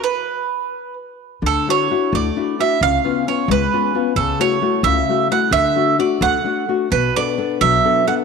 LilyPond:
<<
  \new Staff \with { instrumentName = "Mandolin" } { \time 6/8 \key d \major \tempo 4. = 87 b'2 r4 | a'8 cis''4 d''4 e''8 | eis''4 cis''8 b'4. | a'8 cis''4 e''4 fis''8 |
e''4 d''8 fis''4. | b'8 d''4 e''4 fis''8 | }
  \new Staff \with { instrumentName = "Nylon-string guitar" } { \time 6/8 \key d \major r2. | d8 <d' e' fis'>8 <d' e' fis'>8 a8 <d' e' fis'>8 <d' e' fis'>8 | cis8 <b cis' eis'>8 <b cis' eis'>8 gis8 <b cis' eis'>8 <b cis' eis'>8 | cis8 <a e' fis'>8 <a e' fis'>8 cis8 <a e' fis'>8 <a e' fis'>8 |
d8 <a d' fis'>8 <a d' fis'>8 a8 <a d' fis'>8 <a d' fis'>8 | b,8 <b d' a'>8 <b d' a'>8 fis8 <b d' a'>8 <b d' a'>8 | }
  \new Staff \with { instrumentName = "Upright bass" } { \clef bass \time 6/8 \key d \major r2. | d,8 r4 d,8 r4 | cis,8 r4 cis,8 r4 | cis,8 r4 cis,8 r4 |
d,8 r4 d,8 r4 | b,,8 r4 b,,8 r4 | }
>>